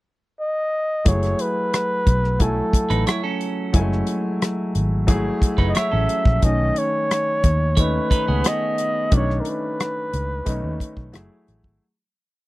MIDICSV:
0, 0, Header, 1, 7, 480
1, 0, Start_track
1, 0, Tempo, 671892
1, 757, Time_signature, 4, 2, 24, 8
1, 8911, End_track
2, 0, Start_track
2, 0, Title_t, "Flugelhorn"
2, 0, Program_c, 0, 56
2, 288, Note_on_c, 0, 75, 87
2, 772, Note_on_c, 0, 73, 83
2, 783, Note_off_c, 0, 75, 0
2, 1009, Note_on_c, 0, 71, 90
2, 1020, Note_off_c, 0, 73, 0
2, 1729, Note_on_c, 0, 69, 73
2, 1739, Note_off_c, 0, 71, 0
2, 2200, Note_off_c, 0, 69, 0
2, 4064, Note_on_c, 0, 75, 71
2, 4122, Note_on_c, 0, 76, 90
2, 4133, Note_off_c, 0, 75, 0
2, 4605, Note_on_c, 0, 75, 84
2, 4615, Note_off_c, 0, 76, 0
2, 4845, Note_on_c, 0, 73, 100
2, 4856, Note_off_c, 0, 75, 0
2, 5574, Note_on_c, 0, 71, 82
2, 5584, Note_off_c, 0, 73, 0
2, 6053, Note_on_c, 0, 75, 88
2, 6064, Note_off_c, 0, 71, 0
2, 6524, Note_off_c, 0, 75, 0
2, 6543, Note_on_c, 0, 73, 82
2, 6719, Note_on_c, 0, 70, 45
2, 6729, Note_off_c, 0, 73, 0
2, 6778, Note_on_c, 0, 71, 83
2, 6789, Note_off_c, 0, 70, 0
2, 7969, Note_off_c, 0, 71, 0
2, 8911, End_track
3, 0, Start_track
3, 0, Title_t, "Clean electric guitar"
3, 0, Program_c, 1, 27
3, 2072, Note_on_c, 1, 71, 57
3, 2077, Note_on_c, 1, 63, 50
3, 2186, Note_off_c, 1, 71, 0
3, 2189, Note_off_c, 1, 63, 0
3, 2193, Note_on_c, 1, 73, 69
3, 2197, Note_on_c, 1, 64, 57
3, 2307, Note_off_c, 1, 73, 0
3, 2309, Note_off_c, 1, 64, 0
3, 2312, Note_on_c, 1, 69, 61
3, 2315, Note_on_c, 1, 61, 54
3, 3003, Note_off_c, 1, 69, 0
3, 3004, Note_off_c, 1, 61, 0
3, 3988, Note_on_c, 1, 71, 57
3, 3991, Note_on_c, 1, 63, 50
3, 4103, Note_off_c, 1, 71, 0
3, 4105, Note_off_c, 1, 63, 0
3, 4106, Note_on_c, 1, 73, 58
3, 4111, Note_on_c, 1, 64, 49
3, 4222, Note_off_c, 1, 73, 0
3, 4225, Note_off_c, 1, 64, 0
3, 4226, Note_on_c, 1, 69, 64
3, 4232, Note_on_c, 1, 61, 49
3, 4920, Note_off_c, 1, 69, 0
3, 4923, Note_off_c, 1, 61, 0
3, 5549, Note_on_c, 1, 73, 64
3, 5778, Note_off_c, 1, 73, 0
3, 5792, Note_on_c, 1, 71, 67
3, 5796, Note_on_c, 1, 63, 56
3, 5906, Note_off_c, 1, 71, 0
3, 5908, Note_off_c, 1, 63, 0
3, 5914, Note_on_c, 1, 59, 50
3, 5917, Note_on_c, 1, 68, 54
3, 6605, Note_off_c, 1, 68, 0
3, 6607, Note_off_c, 1, 59, 0
3, 8911, End_track
4, 0, Start_track
4, 0, Title_t, "Grand piano"
4, 0, Program_c, 2, 0
4, 747, Note_on_c, 2, 54, 57
4, 752, Note_on_c, 2, 57, 53
4, 756, Note_on_c, 2, 64, 56
4, 762, Note_on_c, 2, 68, 61
4, 890, Control_c, 2, 64, 127
4, 1434, Note_off_c, 2, 54, 0
4, 1437, Note_off_c, 2, 57, 0
4, 1439, Note_off_c, 2, 64, 0
4, 1442, Note_off_c, 2, 68, 0
4, 1707, Note_on_c, 2, 54, 66
4, 1714, Note_on_c, 2, 57, 56
4, 1715, Note_on_c, 2, 64, 55
4, 1720, Note_on_c, 2, 80, 67
4, 2394, Note_off_c, 2, 54, 0
4, 2397, Note_off_c, 2, 57, 0
4, 2397, Note_off_c, 2, 64, 0
4, 2400, Note_off_c, 2, 80, 0
4, 2663, Note_on_c, 2, 54, 72
4, 2667, Note_on_c, 2, 56, 56
4, 2672, Note_on_c, 2, 64, 67
4, 2675, Note_on_c, 2, 80, 76
4, 2712, Note_on_c, 2, 57, 65
4, 2716, Note_off_c, 2, 56, 0
4, 3351, Note_off_c, 2, 54, 0
4, 3355, Note_off_c, 2, 64, 0
4, 3357, Note_off_c, 2, 80, 0
4, 3375, Note_off_c, 2, 57, 0
4, 3622, Note_on_c, 2, 54, 76
4, 3625, Note_on_c, 2, 57, 71
4, 3628, Note_on_c, 2, 64, 68
4, 3633, Note_on_c, 2, 68, 93
4, 4310, Note_off_c, 2, 54, 0
4, 4312, Note_off_c, 2, 57, 0
4, 4313, Note_off_c, 2, 64, 0
4, 4316, Note_off_c, 2, 68, 0
4, 4585, Note_on_c, 2, 51, 65
4, 4590, Note_on_c, 2, 57, 57
4, 4594, Note_on_c, 2, 61, 56
4, 4597, Note_on_c, 2, 80, 64
4, 4599, Control_c, 2, 64, 0
4, 4723, Control_c, 2, 64, 127
4, 5272, Note_off_c, 2, 51, 0
4, 5274, Note_off_c, 2, 57, 0
4, 5277, Note_off_c, 2, 61, 0
4, 5278, Note_off_c, 2, 80, 0
4, 5545, Note_on_c, 2, 51, 65
4, 5551, Note_on_c, 2, 57, 61
4, 5555, Note_on_c, 2, 61, 61
4, 5558, Note_on_c, 2, 63, 66
4, 6234, Note_off_c, 2, 51, 0
4, 6236, Note_off_c, 2, 57, 0
4, 6239, Note_off_c, 2, 61, 0
4, 6240, Note_off_c, 2, 63, 0
4, 6504, Note_on_c, 2, 51, 61
4, 6510, Note_on_c, 2, 57, 60
4, 6513, Note_on_c, 2, 61, 58
4, 6517, Note_on_c, 2, 62, 61
4, 6561, Note_off_c, 2, 62, 0
4, 6566, Note_on_c, 2, 63, 70
4, 7194, Note_off_c, 2, 51, 0
4, 7198, Note_off_c, 2, 57, 0
4, 7199, Note_off_c, 2, 61, 0
4, 7225, Note_off_c, 2, 63, 0
4, 7468, Note_on_c, 2, 51, 78
4, 7472, Note_on_c, 2, 57, 73
4, 7475, Note_on_c, 2, 61, 69
4, 7479, Note_on_c, 2, 63, 87
4, 7942, Note_off_c, 2, 57, 0
4, 7948, Note_on_c, 2, 54, 76
4, 7953, Note_off_c, 2, 51, 0
4, 7953, Note_on_c, 2, 57, 74
4, 7956, Note_on_c, 2, 64, 78
4, 7957, Note_off_c, 2, 61, 0
4, 7959, Note_off_c, 2, 63, 0
4, 7959, Note_on_c, 2, 68, 83
4, 7967, Control_c, 2, 64, 0
4, 8081, Control_c, 2, 64, 127
4, 8338, Note_off_c, 2, 54, 0
4, 8340, Note_off_c, 2, 57, 0
4, 8342, Note_off_c, 2, 64, 0
4, 8343, Note_off_c, 2, 68, 0
4, 8448, Control_c, 2, 64, 0
4, 8911, End_track
5, 0, Start_track
5, 0, Title_t, "Fingered electric bass"
5, 0, Program_c, 3, 33
5, 760, Note_on_c, 3, 30, 85
5, 951, Note_off_c, 3, 30, 0
5, 1480, Note_on_c, 3, 35, 72
5, 1862, Note_off_c, 3, 35, 0
5, 2074, Note_on_c, 3, 33, 82
5, 2170, Note_off_c, 3, 33, 0
5, 2675, Note_on_c, 3, 30, 79
5, 2866, Note_off_c, 3, 30, 0
5, 3397, Note_on_c, 3, 32, 69
5, 3779, Note_off_c, 3, 32, 0
5, 3988, Note_on_c, 3, 30, 77
5, 4085, Note_off_c, 3, 30, 0
5, 4238, Note_on_c, 3, 33, 75
5, 4331, Note_off_c, 3, 33, 0
5, 4471, Note_on_c, 3, 34, 72
5, 4567, Note_off_c, 3, 34, 0
5, 4596, Note_on_c, 3, 35, 88
5, 4786, Note_off_c, 3, 35, 0
5, 5319, Note_on_c, 3, 39, 87
5, 5701, Note_off_c, 3, 39, 0
5, 5920, Note_on_c, 3, 37, 81
5, 6013, Note_off_c, 3, 37, 0
5, 6519, Note_on_c, 3, 35, 94
5, 6710, Note_off_c, 3, 35, 0
5, 7241, Note_on_c, 3, 37, 73
5, 7431, Note_off_c, 3, 37, 0
5, 7483, Note_on_c, 3, 35, 81
5, 7577, Note_off_c, 3, 35, 0
5, 7600, Note_on_c, 3, 39, 84
5, 7695, Note_off_c, 3, 39, 0
5, 7839, Note_on_c, 3, 35, 85
5, 7935, Note_off_c, 3, 35, 0
5, 7962, Note_on_c, 3, 30, 76
5, 8056, Note_off_c, 3, 30, 0
5, 8204, Note_on_c, 3, 33, 76
5, 8298, Note_off_c, 3, 33, 0
5, 8320, Note_on_c, 3, 32, 68
5, 8416, Note_off_c, 3, 32, 0
5, 8911, End_track
6, 0, Start_track
6, 0, Title_t, "Muted fingered electric bass strokes"
6, 1957, Note_on_c, 9, 29, 42
6, 2029, Note_off_c, 9, 29, 0
6, 3874, Note_on_c, 9, 29, 43
6, 3945, Note_off_c, 9, 29, 0
6, 5798, Note_on_c, 9, 29, 37
6, 5869, Note_off_c, 9, 29, 0
6, 8911, End_track
7, 0, Start_track
7, 0, Title_t, "Drums"
7, 755, Note_on_c, 9, 42, 74
7, 758, Note_on_c, 9, 36, 96
7, 827, Note_off_c, 9, 42, 0
7, 829, Note_off_c, 9, 36, 0
7, 877, Note_on_c, 9, 42, 39
7, 890, Note_on_c, 9, 37, 26
7, 948, Note_off_c, 9, 42, 0
7, 961, Note_off_c, 9, 37, 0
7, 993, Note_on_c, 9, 42, 75
7, 1064, Note_off_c, 9, 42, 0
7, 1240, Note_on_c, 9, 42, 62
7, 1243, Note_on_c, 9, 37, 82
7, 1311, Note_off_c, 9, 42, 0
7, 1315, Note_off_c, 9, 37, 0
7, 1477, Note_on_c, 9, 36, 87
7, 1477, Note_on_c, 9, 42, 55
7, 1548, Note_off_c, 9, 36, 0
7, 1549, Note_off_c, 9, 42, 0
7, 1602, Note_on_c, 9, 37, 28
7, 1673, Note_off_c, 9, 37, 0
7, 1713, Note_on_c, 9, 42, 74
7, 1715, Note_on_c, 9, 36, 84
7, 1785, Note_off_c, 9, 42, 0
7, 1786, Note_off_c, 9, 36, 0
7, 1953, Note_on_c, 9, 36, 81
7, 1960, Note_on_c, 9, 42, 68
7, 2024, Note_off_c, 9, 36, 0
7, 2031, Note_off_c, 9, 42, 0
7, 2076, Note_on_c, 9, 42, 43
7, 2147, Note_off_c, 9, 42, 0
7, 2192, Note_on_c, 9, 42, 83
7, 2205, Note_on_c, 9, 37, 93
7, 2263, Note_off_c, 9, 42, 0
7, 2276, Note_off_c, 9, 37, 0
7, 2434, Note_on_c, 9, 42, 58
7, 2506, Note_off_c, 9, 42, 0
7, 2670, Note_on_c, 9, 42, 71
7, 2671, Note_on_c, 9, 36, 96
7, 2741, Note_off_c, 9, 42, 0
7, 2743, Note_off_c, 9, 36, 0
7, 2804, Note_on_c, 9, 37, 28
7, 2875, Note_off_c, 9, 37, 0
7, 2906, Note_on_c, 9, 42, 73
7, 2977, Note_off_c, 9, 42, 0
7, 3157, Note_on_c, 9, 42, 60
7, 3160, Note_on_c, 9, 37, 82
7, 3228, Note_off_c, 9, 42, 0
7, 3232, Note_off_c, 9, 37, 0
7, 3393, Note_on_c, 9, 42, 58
7, 3465, Note_off_c, 9, 42, 0
7, 3628, Note_on_c, 9, 42, 76
7, 3630, Note_on_c, 9, 36, 86
7, 3700, Note_off_c, 9, 42, 0
7, 3701, Note_off_c, 9, 36, 0
7, 3870, Note_on_c, 9, 36, 78
7, 3877, Note_on_c, 9, 42, 57
7, 3941, Note_off_c, 9, 36, 0
7, 3948, Note_off_c, 9, 42, 0
7, 3986, Note_on_c, 9, 36, 69
7, 4058, Note_off_c, 9, 36, 0
7, 4107, Note_on_c, 9, 42, 80
7, 4121, Note_on_c, 9, 37, 102
7, 4179, Note_off_c, 9, 42, 0
7, 4192, Note_off_c, 9, 37, 0
7, 4351, Note_on_c, 9, 42, 64
7, 4423, Note_off_c, 9, 42, 0
7, 4468, Note_on_c, 9, 36, 94
7, 4540, Note_off_c, 9, 36, 0
7, 4589, Note_on_c, 9, 42, 72
7, 4591, Note_on_c, 9, 36, 99
7, 4660, Note_off_c, 9, 42, 0
7, 4662, Note_off_c, 9, 36, 0
7, 4830, Note_on_c, 9, 42, 77
7, 4901, Note_off_c, 9, 42, 0
7, 5078, Note_on_c, 9, 42, 56
7, 5082, Note_on_c, 9, 37, 75
7, 5150, Note_off_c, 9, 42, 0
7, 5153, Note_off_c, 9, 37, 0
7, 5312, Note_on_c, 9, 42, 55
7, 5314, Note_on_c, 9, 36, 86
7, 5384, Note_off_c, 9, 42, 0
7, 5386, Note_off_c, 9, 36, 0
7, 5551, Note_on_c, 9, 42, 81
7, 5553, Note_on_c, 9, 36, 91
7, 5623, Note_off_c, 9, 42, 0
7, 5624, Note_off_c, 9, 36, 0
7, 5792, Note_on_c, 9, 36, 77
7, 5798, Note_on_c, 9, 42, 62
7, 5864, Note_off_c, 9, 36, 0
7, 5870, Note_off_c, 9, 42, 0
7, 6031, Note_on_c, 9, 42, 85
7, 6044, Note_on_c, 9, 37, 102
7, 6103, Note_off_c, 9, 42, 0
7, 6116, Note_off_c, 9, 37, 0
7, 6274, Note_on_c, 9, 42, 63
7, 6345, Note_off_c, 9, 42, 0
7, 6513, Note_on_c, 9, 42, 72
7, 6515, Note_on_c, 9, 36, 104
7, 6584, Note_off_c, 9, 42, 0
7, 6587, Note_off_c, 9, 36, 0
7, 6646, Note_on_c, 9, 37, 28
7, 6717, Note_off_c, 9, 37, 0
7, 6751, Note_on_c, 9, 42, 75
7, 6823, Note_off_c, 9, 42, 0
7, 7002, Note_on_c, 9, 42, 57
7, 7005, Note_on_c, 9, 37, 87
7, 7073, Note_off_c, 9, 42, 0
7, 7077, Note_off_c, 9, 37, 0
7, 7240, Note_on_c, 9, 42, 58
7, 7311, Note_off_c, 9, 42, 0
7, 7474, Note_on_c, 9, 42, 80
7, 7477, Note_on_c, 9, 36, 79
7, 7546, Note_off_c, 9, 42, 0
7, 7549, Note_off_c, 9, 36, 0
7, 7717, Note_on_c, 9, 36, 75
7, 7724, Note_on_c, 9, 42, 62
7, 7789, Note_off_c, 9, 36, 0
7, 7795, Note_off_c, 9, 42, 0
7, 7835, Note_on_c, 9, 36, 72
7, 7906, Note_off_c, 9, 36, 0
7, 7955, Note_on_c, 9, 42, 85
7, 7969, Note_on_c, 9, 37, 104
7, 8027, Note_off_c, 9, 42, 0
7, 8040, Note_off_c, 9, 37, 0
7, 8202, Note_on_c, 9, 42, 59
7, 8274, Note_off_c, 9, 42, 0
7, 8317, Note_on_c, 9, 36, 84
7, 8388, Note_off_c, 9, 36, 0
7, 8911, End_track
0, 0, End_of_file